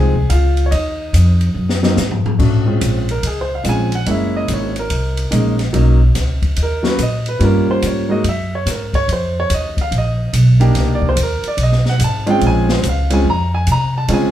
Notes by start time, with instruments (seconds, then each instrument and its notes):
Already playing: upright bass C2, grand piano F3 G#3 C4 D#4 G#4 G#5
0.15 kick
0.30 upright bass C#2, grand piano F4 F5, kick, hi-hat pedal, ride
0.57 ride
0.66 grand piano C#5
0.71 upright bass D#2, grand piano D#4 D#5, kick, ride
1.13 upright bass F2, kick, hi-hat pedal, ride
1.41 ride
1.54 upright bass F#2
1.69 snare
1.83 grand piano F#3 A#3 C4 D#4, snare
1.97 upright bass G#2, snare, hi-hat pedal
2.11 floor tom
2.25 muted upright bass stroke, floor tom
2.39 upright bass A#2, grand piano A3 C#4 D4 F#4, kick, crash
2.66 grand piano G#3 C4 C#4 F4
2.81 upright bass A#1, kick, hi-hat pedal, ride
3.09 grand piano A#4, ride
3.23 upright bass C#2, kick, ride
3.27 grand piano G#4
3.41 grand piano C5
3.55 grand piano F5
3.64 upright bass A#1, grand piano G#3 C4 C#4 F4, kick, hi-hat pedal, ride
3.69 grand piano G#5
3.92 grand piano F#5, ride
4.06 upright bass F#1, grand piano G#3 A#3 C#4 E4, kick, ride
4.11 grand piano E5
4.37 grand piano D#5
4.48 upright bass G#1, kick, hi-hat pedal, ride
4.54 grand piano C#5
4.76 grand piano A#4, ride
4.90 upright bass C2, kick, ride
5.17 ride
5.31 upright bass A#1, grand piano G#3 A#3 C#4 D#4, kick, hi-hat pedal, ride
5.59 snare, ride
5.73 upright bass B1, grand piano F#3 A#3 C#4 D#4, kick, ride
6.15 upright bass C#2, kick, snare, hi-hat pedal, ride
6.42 kick, ride
6.56 upright bass D#2, kick, ride
6.63 grand piano A#4
6.83 grand piano F#3 A#3 C#4 F#4, snare
6.87 grand piano B4
6.99 upright bass A#2, kick, hi-hat pedal, ride
7.03 grand piano D#5
7.26 grand piano B4, ride
7.39 upright bass G2, grand piano G3 A#3 C#4 F4, kick, ride
7.44 grand piano A#4
7.67 grand piano C5, muted upright bass stroke
7.82 upright bass G#2, kick, hi-hat pedal, ride
7.87 grand piano C#5
8.09 grand piano G#3 A#3 D#4 F#4 D#5
8.24 upright bass F#2, kick, ride
8.29 grand piano E5
8.55 grand piano C#5
8.66 upright bass G#2, kick, snare, hi-hat pedal, ride
8.70 grand piano A#4
8.94 grand piano C#5, kick, ride
9.08 upright bass F2, kick, ride
9.13 grand piano C5
9.40 grand piano C#5
9.50 upright bass D#2, kick, hi-hat pedal, ride
9.54 grand piano D#5
9.77 kick, ride
9.81 grand piano F5
9.91 upright bass A#1, kick, ride
9.98 grand piano D#5
10.33 upright bass B1, kick, hi-hat pedal, ride
10.60 grand piano A#3 D4 D#4 G4, ride
10.75 upright bass C2, kick, snare, ride
10.95 grand piano D5
11.02 kick
11.09 grand piano C5
11.16 upright bass D#2, kick, hi-hat pedal, ride
11.23 grand piano A#4
11.43 muted upright bass stroke, ride
11.48 grand piano D5
11.57 upright bass B1, kick, ride
11.63 grand piano D#5
11.72 snare
11.85 grand piano F#5, snare
11.99 upright bass G#1, kick, hi-hat pedal, ride
12.04 grand piano A5
12.27 grand piano G#3 C4 C#4 F4 G5, ride
12.41 upright bass A#1, kick, ride
12.47 grand piano G#5
12.69 grand piano C5, snare
12.83 upright bass C#2, kick, hi-hat pedal, ride
12.89 grand piano F5
13.10 grand piano G#3 C4 C#4 F4 G#5, ride
13.25 upright bass F2, kick
13.30 grand piano A#5
13.55 grand piano G#5
13.67 upright bass C3, kick, hi-hat pedal, ride
13.72 grand piano A#5
13.98 grand piano A5
14.08 upright bass C#3, grand piano G#3 C4 C#4 F4, kick, ride
14.13 grand piano G#5